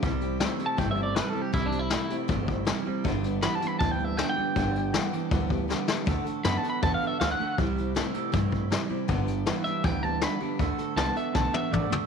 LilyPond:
<<
  \new Staff \with { instrumentName = "Clean electric guitar" } { \time 4/4 \key g \major \tempo 4 = 159 r4 \tuplet 3/2 { r4 a''8 g''8 e''8 d''8 b'8 a'8 g'8 } | \tuplet 3/2 { e'8 d'8 e'8~ } e'8 r2 r8 | r4 \tuplet 3/2 { b''8 a''8 b''8 a''8 g''8 e''8 g''8 g''4~ } | g''2~ g''8 r4. |
r4 \tuplet 3/2 { b''8 a''8 b''8 a''8 f''8 e''8 f''8 fis''4 } | r1 | r4. e''8 g''8 a''8 b''4~ | b''4 a''8 e''8 a''8 e''8 d''8 r8 | }
  \new Staff \with { instrumentName = "Steel-string acoustic guitar" } { \time 4/4 \key g \major <c g c' e' g'>8 <c' e' g'>8 <g c' e' g'>8 <c' e' g'>8 <c g c' e' g'>8 <c' e' g'>8 <g e' g'>8 <c' e' g'>8 | <c g c' e' g'>8 <c' e' g'>8 <g c' e' g'>8 <c' e' g'>8 <c g c' e' g'>8 <c' e' g'>8 <g c' e' g'>8 <c' e' g'>8 | <g, d g b d' g'>8 <g b d' g'>8 <g b d' g'>8 <g b d' g'>8 <g, d g b d' g'>8 <g b d' g'>8 <g b d' g'>8 <g b d' g'>8 | <g, d g b d' g'>8 <g b d' g'>8 <g b d' g'>8 <g b d' g'>8 <g, d g b d' g'>8 <g b d' g'>8 <g b d' g'>8 <g b d' g'>8 |
<d a d' fis' a'>8 <d' fis' a'>8 <a d' fis' a'>8 <d' fis' a'>8 <d a d' fis' a'>8 <d' fis' a'>8 <a d' fis' a'>8 <d' fis' a'>8 | <c g c' e' g'>8 <c' e' g'>8 <g c' e' g'>8 <c' e' g'>8 <c g c' e' g'>8 <c' e' g'>8 <g c' e' g'>8 <c' e' g'>8 | <g, d g b d' g'>8 <g b d' g'>8 <g b d' g'>8 <g b d' g'>8 <g, d g b d' g'>8 <g b d' g'>8 <g b d' g'>8 <g b d' g'>8 | <d a d' fis' a'>8 <d' fis' a'>8 <a d' fis'>8 <d' fis' a'>8 <d a d' fis' a'>8 <d' fis' a'>8 <a d' fis' a'>8 <d' fis' a'>8 | }
  \new Staff \with { instrumentName = "Clean electric guitar" } { \clef bass \time 4/4 \key g \major <c g>4 <c a>8 <c a>8 <c a>4 <c g>8 <c g>8 | <c g>4 <c a>8 <c a>8 <c a>4 <c g>8 <c g>8 | <g, d>4 <g, e>8 <g, e>8 <g, e>4 <g, d>8 <g, d>8 | <g, d>4 <g, e>8 <g, e>8 <g, e>4 <g, d>8 <g, d>8 |
<d a>4 <d b>8 <d b>8 <d b>4 <d a>8 <d a>8 | <c g>4 <c a>8 <c a>8 <c a>4 <c g>8 <c g>8 | <g, d>4 <g, e>8 <g, e>8 <g, e>4 <g, d>8 <g, d>8 | <d a>4 <d b>8 <d b>8 <d b>4 <d a>8 <d a>8 | }
  \new Staff \with { instrumentName = "Upright bass" } { \clef bass \time 4/4 \key g \major c,4. r8 g,,4. r8 | c,4. r8 g,,4. r8 | g,,4. r8 d,4. r8 | g,,4. r8 d,4. r8 |
d,8 r8 fis,8 r8 e,8 r8 d,8 r8 | c,4. r8 g,4. r8 | g,,4. r8 d,4. r8 | d,8 r8 c,8 r8 b,,8 r8 a,,8 r8 | }
  \new DrumStaff \with { instrumentName = "Drums" } \drummode { \time 4/4 <hh bd>8 hh8 <hh sn>8 hh8 <hh bd>4 <hh sn>4 | <hh bd>8 hh8 <hh sn>8 hh8 <hh bd>8 bd8 <hh sn>4 | <hh bd>8 hh8 <hh sn>8 hh8 <hh bd>4 sn4 | <hh bd>8 hh8 <hh sn>8 hh8 <hh bd>8 bd8 sn8 sn8 |
<hh bd>8 hh8 <hh sn>8 hh8 <hh bd>4 <hh sn>4 | <hh bd>8 hh8 <hh sn>8 hh8 <hh bd>8 bd8 <hh sn>4 | <hh bd>8 hh8 <hh sn>8 hh8 <hh bd>4 <hh sn>4 | <hh bd>8 hh8 <hh sn>8 hh8 <bd sn>8 tommh8 toml8 tomfh8 | }
>>